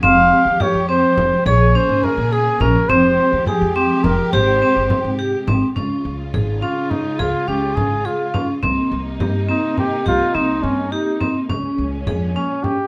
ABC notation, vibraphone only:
X:1
M:5/8
L:1/8
Q:1/4=105
K:Dblyd
V:1 name="Vibraphone"
C2 G C2 | A D2 A D | C2 G C2 | G C2 G C |
D2 A D2 | A D2 A D | C2 G C2 | G C2 G C |
D2 A D2 |]